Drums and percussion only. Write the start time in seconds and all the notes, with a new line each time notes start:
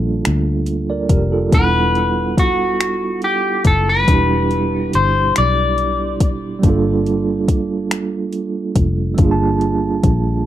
0.25 finger snap, closed hi-hat
0.66 closed hi-hat
1.09 kick, closed hi-hat
1.52 kick, closed hi-hat
1.95 closed hi-hat
2.37 kick, closed hi-hat
2.81 finger snap, closed hi-hat
3.22 closed hi-hat
3.65 kick, closed hi-hat
4.08 kick, closed hi-hat
4.51 closed hi-hat
4.93 closed hi-hat
5.36 finger snap, closed hi-hat
5.78 closed hi-hat
6.20 kick, closed hi-hat
6.63 kick, closed hi-hat
7.06 closed hi-hat
7.48 kick, closed hi-hat
7.91 finger snap, closed hi-hat
8.33 closed hi-hat
8.76 kick, closed hi-hat
9.18 kick, closed hi-hat
9.61 closed hi-hat
10.03 kick, closed hi-hat